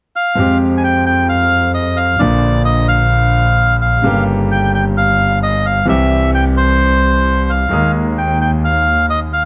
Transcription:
0.16 F5
0.35 F2 F3 G#3 C4
0.40 G4
0.77 G#5
0.84 G5
1.06 G5
1.29 F5
1.74 D#5
1.97 F5
2.19 A#1 A#2 D3 F3 A#3 F4 D5
2.65 D#5
2.88 F5
3.81 F5
4.02 G1 G2 C#3 G3 A#3
4.06 G4
4.51 G5
4.75 G5
4.97 F5
5.43 D#5
5.66 F5
5.85 C2 C3 E3 G3 C4 G4 E5
6.35 G5
6.57 C5
7.50 F5
7.70 D#2 D#3 G#3 A#3 G#4
8.18 G5
8.41 G5
8.65 F5
9.10 D#5
9.33 F5

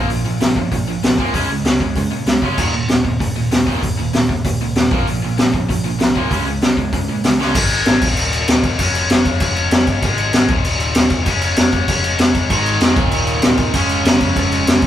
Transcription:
0.10 A#1 A#2 F3, open hi-hat
0.25 A#1 A#2 F3
0.40 A#1 A#2 F3, snare, open hi-hat
0.56 A#1 A#2 F3, kick
0.72 A#1 A#2 F3, kick, open hi-hat
0.88 A#2 F3
1.03 C2 A#2 F3, snare, open hi-hat
1.18 A#2 F3 A#3, kick
1.33 C#2 C#3 G#3 C#4, kick, open hi-hat
1.49 C#2 C#3 G#3
1.64 C#2 C#3 G#3, snare, open hi-hat
1.80 C#2 C#3 G#3, kick
1.95 C#2 C#3 G#3, kick, open hi-hat
2.11 A#2 C#3 G#3
2.26 C#2 C#3 G#3, snare, open hi-hat
2.41 C#2 C#3 G#3 C#4, kick
2.58 D#1 D#2 A#2 D#3, kick, crash
2.74 D#1 D#2 A#2
2.88 D#1 D#2 A#2, snare, open hi-hat
3.04 D#1 D#2 A#2, kick
3.20 D#1 D#2 A#2, kick, open hi-hat
3.36 D#2 A#2
3.50 D#1 D#2 A#2, snare, open hi-hat
3.66 D#2 A#2 D#3, kick
3.82 D#1 D#2 A#2, kick, open hi-hat
3.97 D#1 D#2 A#2
4.13 D#1 D#2 A#2, snare, open hi-hat
4.29 D#1 D#2 A#2, kick
4.44 D#1 D#2 A#2, kick, open hi-hat
4.60 C#2 D#2 A#2
4.75 D#1 D#2 A#2, snare, open hi-hat
4.91 A#1 A#2 F3 A#3, kick
5.07 A#1 A#2 F3, open hi-hat
5.22 A#1 A#2 F3
5.38 A#1 A#2 F3, snare, open hi-hat
5.53 A#1 A#2 F3, kick
5.69 A#1 A#2 F3, kick, open hi-hat
5.84 A#2 F3
5.99 C2 A#2 F3, snare, open hi-hat
6.15 A#2 F3 A#3, kick
6.31 C#2 C#3 G#3 C#4, kick, open hi-hat
6.46 C#2 C#3 G#3
6.61 C#2 C#3 G#3, snare, open hi-hat
6.77 C#2 C#3 G#3, kick
6.92 C#2 C#3 G#3, kick, open hi-hat
7.09 A#2 C#3 G#3
7.24 C#2 C#3 G#3, snare, open hi-hat
7.39 C#2 C#3 G#3 C#4, snare
7.55 G#1 G#2 D#3, kick, crash
7.59 G#3
7.70 crash
7.85 G#1, snare, crash
8.01 D#1 D#2 A#2 D#3, kick, crash
8.17 D#1, crash
8.32 crash
8.48 D#1, snare, crash
8.63 D#1, kick, crash
8.78 F1 C#3 G#3, kick, crash
8.82 C#4
8.95 crash
9.09 F1, snare, crash
9.25 F1, kick, crash
9.40 F1, kick, crash
9.56 crash
9.71 F1, snare, crash
9.87 G1, kick, crash
10.02 G#1 G#2 D#3, kick, crash
10.06 G#3
10.18 crash
10.33 G#1, snare, crash
10.48 D#1 D#2 A#2, kick, crash
10.53 D#3
10.64 D#1, crash
10.80 crash
10.94 D#1, snare, crash
11.10 E1, kick, crash
11.26 F1 C#3 G#3, kick, crash
11.30 C#4
11.41 crash
11.56 F1, snare, crash
11.72 F1, kick, crash
11.88 F1, kick, crash
12.04 crash
12.19 F1, snare, crash
12.35 F1, kick, crash
12.49 G#1 G#2 D#3, kick, crash
12.53 G#3
12.66 crash
12.80 F1, snare, crash
12.96 D#1 D#2 A#2 D#3, kick, crash
13.11 D#1, crash
13.27 crash
13.42 D#1, snare, crash
13.57 D#1, kick, crash
13.73 F1 C#3 G#3, kick, crash
13.77 C#4
13.89 crash
14.05 F1, snare, crash
14.20 F1, kick, crash
14.36 F1, kick, crash
14.52 crash
14.67 F1, snare, crash
14.82 G1, kick, crash

